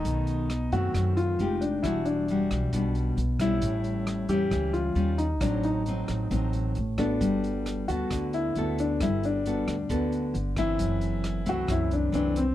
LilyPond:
<<
  \new Staff \with { instrumentName = "Grand piano" } { \time 4/4 \key g \major \tempo 4 = 134 dis'4. fis'4 f'4 d'8 | e'8 d'2 r4 e'8~ | e'4. g'4 f'4 dis'8 | d'8 ees'2 r4 d'8~ |
d'4. fis'4 e'4 d'8 | e'8 d'2 r4 e'8~ | e'4. fis'8 e'8 d'8 d'8 c'8 | }
  \new Staff \with { instrumentName = "Nylon-string guitar" } { \time 4/4 \key g \major << { <dis a>4 r8 <dis a c'>4. <aes ees' g'>4 | <g d' fis'>4 <g d' fis'>4 <g d' fis'>4 r8 <g cis' e'>8~ | <g cis' e'>4. <g cis' e'>4. <g cis' eis'>8 r8 | <fis c' ees'>4 <fis c' ees'>4 <fis c' ees'>4 r8 <b fis' a'>8~ |
<b fis' a'>4. <b fis' a'>4. <b fis' a'>4~ | <b fis' a'>4 <b fis' a'>8 r8 <b fis' a'>4 r8 <e a c'>8~ | <e a c'>4. <e a c'>4. <e a c'>8 r8 | } \\ { b,2 fis,4 r4 | e2 b,2 | a,2 e4 r4 | a,2 a,2 |
g2 d2 | g2 d2 | fis,2 fis,2 | } >> }
  \new Staff \with { instrumentName = "Upright bass" } { \clef bass \time 4/4 \key g \major b,,4. fis,8 fis,4 f,,4 | e,,4. b,,8 b,,4 b,,4 | a,,4. e,8 cis,4 dis,4 | a,,4. a,,8 a,,4 a,,4 |
g,,4. d,8 d,4 d,4 | g,,4. d,8 d,4 g,,4 | fis,,4. c,8 c,4 c,4 | }
  \new DrumStaff \with { instrumentName = "Drums" } \drummode { \time 4/4 <hh bd>8 hh8 <hh ss>8 hh8 <hh bd ss>8 hh8 hh8 hh8 | <hh bd ss>8 hh8 hh8 <hh ss>8 <hh bd>8 hh8 hh8 <hh bd ss>8 | <hh bd>8 hh8 <hh ss>8 hh8 <hh bd ss>8 hh8 hh8 hh8 | <hh bd ss>8 hh8 hh8 <hh ss>8 <hh bd>8 hh8 hh8 <hh bd ss>8 |
<hh bd>8 hh8 <hh ss>8 hh8 <hh bd ss>8 hh8 hh8 hh8 | <hh bd ss>8 hh8 hh8 <hh ss>8 <hh bd>8 hh8 hh8 <hh bd ss>8 | <hh bd>8 hh8 <hh ss>8 hh8 <hh bd ss>8 hh8 hh8 hh8 | }
>>